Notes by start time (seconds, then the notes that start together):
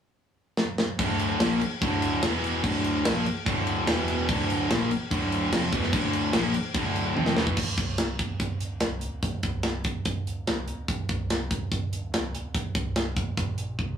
0.57 snare
0.78 snare
0.99 D1 D2 A2 D3, kick, crash
1.19 crash
1.40 A#1 A#2 F3 A#3, snare, crash
1.61 muted distorted electric guitar stroke, muted overdriven electric guitar stroke, muted picked electric bass stroke, crash
1.82 D1 D2 A2 D3, kick, crash
2.02 crash
2.22 E1 E2 B2 E3, snare, crash
2.44 crash
2.64 D1 D2 A2 D3, kick, crash
2.84 crash
3.04 A#1 A#2 F3 A#3, snare, crash
3.26 muted picked electric bass stroke, muted distorted electric guitar stroke, muted overdriven electric guitar stroke, crash
3.46 D1 D2 A2 D3, kick, crash
3.67 crash
3.87 E1 E2 B2 E3, snare, crash
4.08 crash
4.28 D1 D2 A2 D3, kick, crash
4.50 crash
4.70 A#1 A#2 F3 A#3, snare, crash
4.90 muted picked electric bass stroke, muted overdriven electric guitar stroke, muted distorted electric guitar stroke, crash
5.11 D1 D2 A2 D3, kick, crash
5.32 crash
5.51 F1 F2 C3 F3, snare, crash
5.72 E1 E2 B2 E3, kick, crash
5.83 snare
5.93 D1 D2 A2 D3, kick, crash
6.13 crash
6.33 A#1 A#2 F3 A#3, snare, crash
6.53 muted picked electric bass stroke, muted overdriven electric guitar stroke, muted distorted electric guitar stroke, crash
6.74 D1 D2 A2 D3, kick, crash
6.96 crash
7.14 F1 F2 C3 F3, high tom
7.26 snare
7.35 E1 E2 B2 E3, snare
7.47 kick
7.57 D1, kick, crash
7.77 C2, kick, closed hi-hat
7.98 snare, closed hi-hat
8.19 D1, kick, closed hi-hat
8.40 D1, kick, closed hi-hat
8.60 D1, closed hi-hat
8.80 C2, snare, closed hi-hat
9.01 D1, closed hi-hat
9.23 D1, kick, closed hi-hat
9.43 C2, kick, closed hi-hat
9.63 snare, closed hi-hat
9.84 D1, kick, closed hi-hat
10.05 D1, kick, closed hi-hat
10.26 D1, closed hi-hat
10.46 C2, snare, closed hi-hat
10.67 D1, closed hi-hat
10.88 D1, kick, closed hi-hat
11.09 C2, kick, closed hi-hat
11.30 snare, closed hi-hat
11.50 D1, kick, closed hi-hat
11.71 D1, kick, closed hi-hat
11.92 D1, closed hi-hat
12.12 C2, snare, closed hi-hat
12.33 D1, closed hi-hat
12.54 D1, kick, closed hi-hat
12.75 C2, kick, closed hi-hat
12.96 snare, closed hi-hat
13.16 D1, kick, closed hi-hat
13.37 A#1, kick, closed hi-hat
13.58 closed hi-hat
13.79 C2, kick